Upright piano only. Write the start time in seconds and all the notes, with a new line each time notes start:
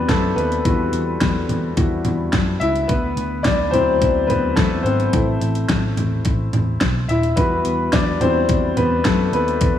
Already playing: G3 B3 C4 D4 E4 F#4 B4 C5 D5
0.09 A3 A4
0.36 B3 B4
0.64 G3 E4 F#4
1.77 G3 E4 F#4
2.60 E4 E5
2.88 B3 B4
3.43 D4 D5
3.71 F#3 C4 D4 E4 C5
4.27 B3 B4
4.56 A3 A4
4.83 C4 C5
5.13 A3 C4 E4
7.08 E4 E5
7.36 G3 B3 E4 F#4 B4
7.93 D4 D5
8.21 G3 C4 E4 F#4 C5
8.77 B3 B4
9.05 A3 A4
9.33 B3 B4